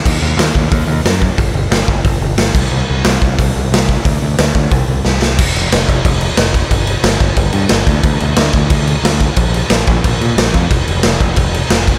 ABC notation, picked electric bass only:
X:1
M:4/4
L:1/8
Q:1/4=180
K:Eblyd
V:1 name="Picked electric bass" clef=bass
E,, E,, E,, E,, E,, E,, _G,,2 | G,,, G,,, G,,, G,,, G,,, G,,, G,,, C,, | C,, C,, C,, C,, C,, C,, C,,2 | D,, D,, D,, D,, C,, C,, C,,2 |
[K:Bb] F,,, F,,, F,,, F,,, F,,,2 F,,,2 | G,,,2 G,,, G,,, G,,, G,, G,,, D,, | D,, D,, D,, D,, D,,2 D,,2 | B,,,2 B,,, B,,, B,,, B,, B,,, F,, |
F,,, F,,, F,,, F,,, F,,,2 F,,,2 |]